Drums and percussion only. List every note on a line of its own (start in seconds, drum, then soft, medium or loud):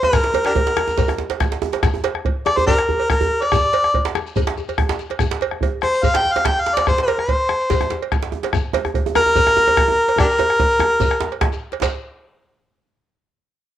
0.03 bombo rim soft
0.03 cowbell medium
0.03 djembe slap medium
0.03 djembe tone loud
0.13 bombo rim loud
0.13 bombo low loud
0.13 djembe slap medium
0.13 djembe tone medium
0.13 djembe bass medium
0.13 shekere medium
0.24 djembe slap medium
0.34 cowbell medium
0.34 djembe slap medium
0.34 djembe tone medium
0.45 bombo rim medium
0.45 djembe slap medium
0.45 djembe tone medium
0.55 bombo low loud
0.55 cowbell medium
0.55 djembe tone loud
0.67 djembe slap medium
0.77 bombo rim loud
0.77 djembe slap medium
0.77 djembe tone medium
0.88 djembe tone medium
0.88 shekere soft
0.98 bombo low loud
0.98 cowbell medium
0.98 djembe slap medium
0.98 djembe bass medium
0.98 shekere medium
1.08 bombo rim medium
1.08 djembe slap medium
1.08 djembe tone loud
1.19 djembe slap medium
1.19 djembe slap soft
1.19 djembe tone medium
1.30 cowbell medium
1.30 djembe slap medium
1.40 bombo rim loud
1.40 bombo low loud
1.40 djembe slap medium
1.40 djembe tone medium
1.40 shekere soft
1.51 bombo rim soft
1.51 djembe slap soft
1.51 djembe slap medium
1.51 djembe tone medium
1.62 djembe tone loud
1.73 bombo rim soft
1.73 cowbell medium
1.73 djembe slap medium
1.83 bombo rim loud
1.83 bombo low loud
1.83 djembe slap medium
1.83 djembe tone medium
1.83 djembe bass medium
1.83 shekere medium
1.94 djembe tone medium
2.04 cowbell medium
2.04 djembe slap medium
2.15 bombo rim medium
2.15 djembe tone medium
2.25 bombo low loud
2.25 cowbell medium
2.46 bombo rim loud
2.46 djembe slap medium
2.46 djembe tone medium
2.58 djembe bass medium
2.58 shekere soft
2.67 bombo low loud
2.67 cowbell medium
2.67 djembe bass medium
2.67 shekere medium
2.79 bombo rim medium
2.79 djembe slap medium
2.89 djembe slap soft
2.89 djembe tone medium
2.89 djembe bass medium
3.00 cowbell soft
3.10 bombo rim loud
3.10 bombo low loud
3.10 djembe slap medium
3.10 shekere soft
3.21 bombo rim soft
3.21 djembe slap soft
3.21 djembe tone medium
3.21 djembe bass medium
3.42 bombo rim soft
3.42 cowbell medium
3.42 djembe slap medium
3.52 bombo rim loud
3.52 bombo low loud
3.52 djembe tone medium
3.52 djembe bass medium
3.52 shekere medium
3.73 bombo rim soft
3.73 cowbell medium
3.73 djembe slap medium
3.84 bombo rim medium
3.84 djembe tone medium
3.94 bombo low loud
3.94 cowbell medium
4.05 djembe slap loud
4.15 bombo rim loud
4.15 djembe slap medium
4.15 djembe tone medium
4.15 shekere soft
4.26 djembe slap soft
4.26 shekere soft
4.36 bombo low loud
4.36 cowbell soft
4.36 djembe tone medium
4.36 djembe bass medium
4.36 shekere medium
4.47 bombo rim medium
4.47 djembe slap loud
4.47 djembe slap medium
4.57 bombo rim soft
4.57 djembe tone medium
4.57 shekere soft
4.69 cowbell soft
4.69 djembe bass soft
4.69 shekere soft
4.78 bombo rim loud
4.78 bombo low loud
4.78 djembe tone medium
4.78 djembe bass medium
4.89 bombo rim soft
4.89 djembe slap loud
4.89 djembe bass medium
4.89 shekere soft
4.99 djembe slap medium
4.99 shekere soft
5.10 bombo rim soft
5.10 cowbell medium
5.10 djembe slap medium
5.19 bombo rim loud
5.19 bombo low loud
5.19 djembe tone medium
5.19 djembe bass medium
5.19 shekere medium
5.31 djembe slap loud
5.41 cowbell medium
5.41 djembe slap medium
5.51 bombo rim medium
5.51 djembe tone medium
5.61 bombo low medium
5.61 cowbell medium
5.61 djembe tone medium
5.82 bombo rim medium
5.82 djembe slap medium
5.82 djembe tone medium
5.93 shekere soft
6.03 bombo low medium
6.03 cowbell medium
6.03 djembe bass medium
6.03 shekere medium
6.14 bombo rim medium
6.14 djembe slap medium
6.14 djembe slap loud
6.25 djembe slap soft
6.25 djembe tone medium
6.36 cowbell medium
6.36 djembe slap medium
6.45 bombo rim loud
6.45 bombo low loud
6.45 djembe slap loud
6.45 djembe slap medium
6.45 shekere soft
6.56 djembe slap soft
6.56 djembe tone medium
6.66 djembe slap medium
6.77 bombo rim soft
6.77 cowbell medium
6.77 djembe slap loud
6.77 djembe slap medium
6.87 bombo rim medium
6.87 bombo low loud
6.87 djembe tone medium
6.87 djembe bass medium
6.87 shekere medium
6.98 djembe slap medium
7.08 cowbell medium
7.08 djembe slap medium
7.18 bombo rim medium
7.18 djembe tone medium
7.28 bombo low loud
7.28 cowbell medium
7.49 bombo rim medium
7.49 djembe tone medium
7.61 shekere soft
7.70 bombo low loud
7.70 cowbell soft
7.70 djembe slap medium
7.70 djembe bass medium
7.70 shekere medium
7.81 bombo rim medium
7.81 djembe slap medium
7.81 djembe tone medium
7.90 djembe slap medium
7.90 djembe slap soft
7.90 djembe tone medium
8.02 cowbell soft
8.12 bombo rim loud
8.12 bombo low loud
8.12 djembe slap medium
8.12 shekere soft
8.22 bombo rim soft
8.22 djembe slap medium
8.22 djembe slap soft
8.22 djembe tone medium
8.32 djembe tone medium
8.43 bombo rim soft
8.43 cowbell medium
8.43 djembe slap medium
8.53 bombo rim loud
8.53 bombo low loud
8.53 djembe tone medium
8.53 djembe bass medium
8.53 shekere medium
8.73 cowbell medium
8.73 djembe slap medium
8.73 djembe tone loud
8.85 bombo rim medium
8.85 djembe tone medium
8.94 bombo low loud
8.94 cowbell soft
8.94 djembe tone medium
9.06 djembe tone medium
9.15 bombo rim loud
9.15 djembe slap medium
9.15 djembe tone loud
9.15 djembe tone medium
9.26 djembe tone medium
9.26 shekere soft
9.35 bombo low loud
9.35 cowbell medium
9.35 djembe tone medium
9.35 djembe bass medium
9.35 shekere medium
9.47 bombo rim medium
9.47 djembe slap medium
9.47 djembe tone medium
9.56 djembe slap soft
9.56 djembe tone medium
9.56 djembe tone loud
9.68 cowbell medium
9.68 djembe tone medium
9.77 bombo rim loud
9.77 bombo low loud
9.77 djembe slap medium
9.77 djembe tone medium
9.77 shekere soft
9.88 bombo rim soft
9.88 djembe slap soft
9.88 djembe tone medium
9.98 djembe slap soft
10.08 bombo rim soft
10.08 cowbell medium
10.08 djembe slap medium
10.18 bombo rim loud
10.18 bombo low loud
10.18 djembe tone medium
10.18 djembe tone loud
10.18 djembe bass medium
10.18 shekere medium
10.29 shekere soft
10.38 cowbell medium
10.38 djembe slap medium
10.38 djembe tone loud
10.49 bombo rim medium
10.49 djembe slap soft
10.49 djembe tone medium
10.59 bombo low loud
10.59 cowbell soft
10.59 djembe slap soft
10.59 djembe tone loud
10.70 shekere soft
10.79 bombo rim loud
10.79 djembe slap medium
10.79 djembe tone medium
10.79 djembe tone loud
10.91 bombo rim soft
11.00 bombo low loud
11.00 cowbell soft
11.00 djembe slap soft
11.00 djembe tone loud
11.00 djembe bass medium
11.00 shekere medium
11.11 bombo rim medium
11.11 djembe slap medium
11.21 djembe slap loud
11.21 djembe tone medium
11.32 cowbell soft
11.41 bombo rim loud
11.41 bombo low loud
11.41 djembe slap loud
11.41 djembe slap medium
11.52 bombo rim soft
11.52 djembe slap soft
11.52 djembe tone medium
11.52 shekere soft
11.72 cowbell medium
11.72 djembe slap medium
11.82 bombo low medium
11.82 cowbell medium
11.82 djembe slap loud
11.82 djembe bass medium
11.82 shekere medium